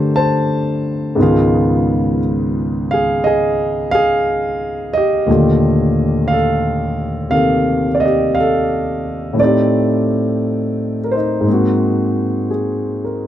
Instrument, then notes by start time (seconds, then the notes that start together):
grand piano
Already playing: G2 D3 A3 A#3 C4 D4 F4 G4 C5 A5
0.16 C5 A5
1.15 C#2 G#2 D#3 B3
1.21 F4 G#4 F5
2.91 G#4 F5
3.24 G#4 D#5
3.91 G#4 F5
4.93 G4 D#5
5.26 D#2 A#2 D3 A3 F4
5.31 G4
6.28 F5
6.33 A4
7.30 C3 D#3 A#3 G4 A4 F5
7.95 D5
8.00 D#5
8.06 G4
8.35 F5
8.40 A4
9.33 A2 A3
9.38 C4 D#4 D5
9.44 G4
11.04 A#4
11.11 D#4 C5
11.41 G#2 G#3
11.47 A#3 C4
11.53 F#4
12.51 G#4
13.04 A#4